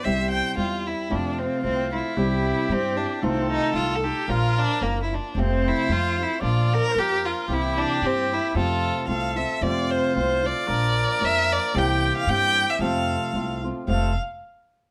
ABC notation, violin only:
X:1
M:2/4
L:1/16
Q:"Swing" 1/4=113
K:C
V:1 name="Violin"
e2 g2 F2 E2 | [K:F] D2 C2 C2 E2- | E4 C2 D2 | C2 _E2 F3/2 A/2 G2 |
F2 D2 B,3/2 E/2 D2 | C2 E2 F2 E2 | F2 B2 G2 F2 | E2 D2 C2 E2 |
F4 f2 e2 | d2 c2 c2 d2- | d4 e2 d2 | g3 f g3 e |
f6 z2 | f2 z6 |]